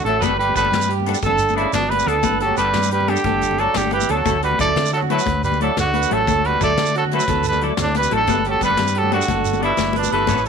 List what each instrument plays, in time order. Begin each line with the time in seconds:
0.04 fingered electric bass A1, tenor saxophone F#3, clean electric guitar A3 E4 A4, trumpet A4, closed hi-hat
0.09 clean electric guitar A4
0.15 low conga
0.21 fingered electric bass G1, tenor saxophone G3, clean electric guitar B3 A4 B4, trumpet B4, muted clean electric guitar stroke, kick, closed hi-hat, muted conga, high conga, low conga, shekere
0.39 tenor saxophone G3, clean electric guitar G4, trumpet B4, closed hi-hat
0.49 high conga, low conga
0.55 fingered electric bass G1, tenor saxophone G3, clean electric guitar B3 D4 A4 B4, trumpet B4, kick, closed hi-hat, shekere
0.65 muted conga
0.72 fingered electric bass G2, snare, closed hi-hat, high conga, low conga, shekere
0.81 shekere
0.89 clean electric guitar G4, closed hi-hat
1.00 high conga, low conga
1.06 clean electric guitar B3 D4 A4, closed hi-hat, muted conga
1.14 low conga, shekere
1.22 fingered electric bass G1, tenor saxophone D3, clean electric guitar A4, trumpet A4, kick, closed hi-hat, high conga, low conga, shekere
1.38 closed hi-hat, shekere
1.48 muted conga, high conga, low conga, shekere
1.54 clean electric guitar B3 D4 A4 D5, trumpet E4, closed hi-hat
1.60 tenor saxophone C#3
1.68 low conga
1.73 fingered electric bass G1, tenor saxophone B2, trumpet D4, snare, closed hi-hat, high conga, low conga, shekere
1.90 tenor saxophone G3, trumpet B4, clean electric guitar B4, closed hi-hat, muted conga
1.99 high conga, low conga, shekere
2.06 fingered electric bass D2, tenor saxophone D3, clean electric guitar B3 D4 A4, trumpet A4, muted clean electric guitar stroke, closed hi-hat
2.16 low conga
2.23 fingered electric bass G1, clean electric guitar B4, kick, closed hi-hat, muted conga, high conga, low conga, shekere
2.40 clean electric guitar G4, trumpet A4, closed hi-hat
2.45 tenor saxophone F#3
2.49 high conga, low conga
2.57 fingered electric bass G1, tenor saxophone G3, clean electric guitar B3 D4 A4 D5, trumpet B4, closed hi-hat, low conga, shekere
2.74 fingered electric bass G2, snare, closed hi-hat, high conga, low conga, shekere
2.83 shekere
2.91 tenor saxophone G3, clean electric guitar G4, trumpet B4, closed hi-hat
3.01 high conga, low conga
3.08 tenor saxophone D3, clean electric guitar B3 D4 A4, trumpet G4, closed hi-hat, muted conga
3.16 shekere
3.24 fingered electric bass G1, clean electric guitar A4, kick, closed hi-hat, high conga, low conga
3.35 low conga
3.41 closed hi-hat, low conga, shekere
3.51 muted conga, high conga, low conga
3.58 tenor saxophone F#3, clean electric guitar D4 A4 D5, trumpet A4, muted clean electric guitar stroke, closed hi-hat
3.68 low conga
3.74 fingered electric bass G1, tenor saxophone D3, trumpet G4, snare, closed hi-hat, high conga, low conga, shekere
3.91 trumpet G4, clean electric guitar B4, closed hi-hat, muted conga
3.96 tenor saxophone E3
4.00 high conga, low conga, shekere
4.09 fingered electric bass D2, tenor saxophone F#3, clean electric guitar B3 D4 A4, trumpet A4, closed hi-hat, low conga
4.25 fingered electric bass D2, clean electric guitar F#3 A3 E4 A4, kick, closed hi-hat, muted conga, high conga, low conga, shekere
4.42 tenor saxophone G3, clean electric guitar F#4, trumpet B4, closed hi-hat
4.51 high conga, low conga
4.58 fingered electric bass D2, clean electric guitar F#3 A3 E4 A4, tenor saxophone A3, trumpet D5, kick, closed hi-hat, shekere
4.67 muted conga
4.76 fingered electric bass D3, snare, closed hi-hat, high conga, low conga, shekere
4.86 shekere
4.93 tenor saxophone F#3, clean electric guitar F#4, trumpet A4, closed hi-hat
5.02 high conga, low conga
5.10 tenor saxophone F#3, clean electric guitar F#3 A3 E4 A4, trumpet B4, closed hi-hat, muted conga
5.19 low conga, shekere
5.26 fingered electric bass D2, muted clean electric guitar stroke, kick, closed hi-hat, high conga, low conga
5.44 tenor saxophone G3, trumpet B4, closed hi-hat, shekere
5.52 muted conga, high conga, low conga, shekere
5.60 clean electric guitar F#3 A3 E4 A4 D5, tenor saxophone F#3, trumpet A4, closed hi-hat
5.77 fingered electric bass D2, tenor saxophone D3, trumpet F#4, snare, closed hi-hat, high conga, low conga, shekere
5.94 clean electric guitar B4, closed hi-hat, muted conga
6.03 high conga, low conga, shekere
6.10 fingered electric bass A1, clean electric guitar F#3 A3 E4 A4, tenor saxophone F#3, trumpet A4, closed hi-hat
6.21 low conga
6.27 fingered electric bass D2, clean electric guitar A4, kick, closed hi-hat, muted conga, high conga, low conga, shekere
6.44 tenor saxophone G3, clean electric guitar F#4, trumpet B4, closed hi-hat
6.54 high conga, low conga
6.61 fingered electric bass D2, clean electric guitar F#3 A3 E4 A4, tenor saxophone A3, trumpet D5, kick, closed hi-hat, shekere
6.70 muted conga
6.77 fingered electric bass D3, snare, closed hi-hat, high conga, low conga, shekere
6.86 shekere
6.95 tenor saxophone F#3, clean electric guitar F#4, trumpet A4, closed hi-hat, low conga
7.04 high conga, low conga
7.11 clean electric guitar F#3 A3 E4 A4, tenor saxophone F#3, trumpet B4, closed hi-hat, muted conga
7.20 low conga, shekere
7.28 fingered electric bass D2, clean electric guitar A4, kick, closed hi-hat, high conga, low conga, shekere
7.44 closed hi-hat, shekere
7.48 tenor saxophone G3, trumpet B4
7.52 muted conga, high conga, low conga, shekere
7.61 clean electric guitar F#3 A3 E4 A4 D5, closed hi-hat
7.70 low conga
7.77 fingered electric bass D2, snare, closed hi-hat, high conga, low conga, shekere
7.82 tenor saxophone A2, trumpet D4
7.94 clean electric guitar B4, trumpet B4, snare, closed hi-hat, muted conga
7.99 tenor saxophone G3
8.03 high conga, low conga, shekere
8.10 fingered electric bass A1, clean electric guitar F#3 A3 E4 A4, closed hi-hat
8.14 tenor saxophone D3, trumpet A4
8.19 low conga
8.27 fingered electric bass G1, clean electric guitar G3 B3 D4 A4 B4, kick, closed hi-hat, muted conga, high conga, low conga, shekere
8.44 tenor saxophone F#3, clean electric guitar G4, closed hi-hat
8.51 trumpet A4, high conga, low conga
8.61 fingered electric bass G1, clean electric guitar G3 B3 D4 A4 B4, tenor saxophone G3, trumpet B4, kick, closed hi-hat, shekere
8.70 muted conga
8.77 fingered electric bass G2, snare, closed hi-hat, high conga, low conga, shekere
8.88 shekere
8.95 tenor saxophone F#3, clean electric guitar G4, trumpet A4, closed hi-hat, low conga
9.03 high conga, low conga
9.11 tenor saxophone D3, clean electric guitar G3 B3 D4 A4, trumpet F#4, closed hi-hat, muted conga
9.20 low conga, shekere
9.28 fingered electric bass G1, clean electric guitar A4, kick, closed hi-hat, high conga, low conga, shekere
9.45 closed hi-hat, shekere
9.53 muted conga, high conga, low conga, shekere
9.60 clean electric guitar G3 B3 D4 A4 D5, trumpet E4, closed hi-hat
9.65 tenor saxophone B2
9.71 low conga
9.77 fingered electric bass G1, snare, closed hi-hat, high conga, low conga, shekere
9.93 clean electric guitar B4, closed hi-hat, muted conga
9.98 tenor saxophone B2, trumpet D4
10.03 high conga, low conga, shekere
10.11 fingered electric bass G1, tenor saxophone E3, clean electric guitar G3 B3 D4 A4, trumpet B4, closed hi-hat
10.19 low conga
10.27 fingered electric bass A1, clean electric guitar B3 C#4 A4 C#5, muted clean electric guitar stroke, kick, closed hi-hat, muted conga, high conga, low conga, shekere
10.37 shekere
10.45 closed hi-hat, low conga